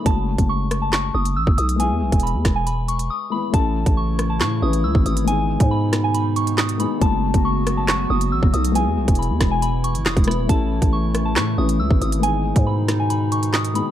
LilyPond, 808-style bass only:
\new Staff \with { instrumentName = "808-style bass" } { \clef bass \time 4/4 \key a \lydian \tempo 4 = 138 fis,,8. fis,,4.~ fis,,16 fis,,8 a,,16 fis,,16 b,,8~ | b,,16 e,16 b,,16 e,,8 e,16 e,,4. r4 | a,,8. a,,4~ a,,16 a,8 a,,8 cis,16 gis,,16 gis,,8~ | gis,,8. gis,2. r16 |
fis,,8. fis,,4.~ fis,,16 fis,,8 a,,16 fis,,16 b,,8~ | b,,16 e,16 b,,16 e,,8 e,16 e,,4~ e,,16 gis,,16 e,,16 e,,8 dis,,16 | a,,8. a,,4~ a,,16 a,8 a,,8 cis,16 gis,,16 gis,,8~ | gis,,8. gis,2. r16 | }